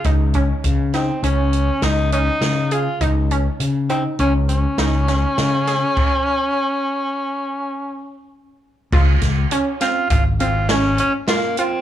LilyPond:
<<
  \new Staff \with { instrumentName = "Synth arpeggio sound" } { \time 5/4 \key des \major \tempo 4 = 101 ees'8 des'4 ees'8 des'4 ees'8 des'4 aes'8 | ees'8 des'4 ees'8 des'4 ees'8 des'4 aes'8 | r1 r4 | f'4 des'8 c'4 c'8 des'4 f'8 f'8 | }
  \new Staff \with { instrumentName = "Tenor saxophone" } { \time 5/4 \key des \major r4. c'8 des'4 ees'8 ees'4 f'8 | r4. c'8 des'8 des'2~ des'8~ | des'1 r4 | r4. f'8 f'8 f'8 des'8 des'8 bes8 c'8 | }
  \new Staff \with { instrumentName = "Fretless electric bass" } { \clef bass \time 5/4 \key des \major des,4 des4 des,4 des,4 des4 | des,4 des4 des,4 des,4 des4 | r1 r4 | des,8 des,8 r4 aes,,2 r4 | }
  \new DrumStaff \with { instrumentName = "Drums" } \drummode { \time 5/4 <hh bd>8 <hh bd>8 <hh bd>8 <hh sn>8 hh8 hh8 <hh sn>8 hh8 <hh sn>8 hh8 | <hh bd>8 hh8 hh8 hh8 hh8 hh8 <hh sn>8 <hh sn>8 <hh sn>8 <hh sn>8 | <cymc bd>4 r4 r4 r4 r4 | <cymc bd>8 <hh bd sn>8 hh8 <hh sn>8 <hh bd>8 hh8 <hh sn>8 hh8 <hh sn>8 hh8 | }
>>